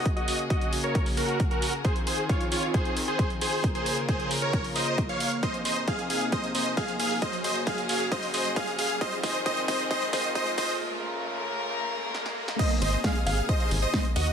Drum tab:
CC |----------------|----------------|----------------|----------------|
HH |xxoxxxoxxooxxxo-|xxoxxxoxxxoxxxoo|xxoxxxo-xooxxxox|xxoxxxoxxxoxxxoo|
SD |----------------|----------------|----------------|----------------|
BD |o---o---o---o---|o---o---o---o---|o---o---o---o---|o---o---o---o---|

CC |----------------|----------------|----------------|x---------------|
HH |xxoxxxoxxooxxxox|xxoxxxoxxxoxxxoo|----------------|xxoxxxoxxxo-xxox|
SD |----------------|----------------|------------oo-o|----o-------o---|
BD |o---o---o---o---|o-o-o-o-o-o-o-o-|----------------|o---o---o---o---|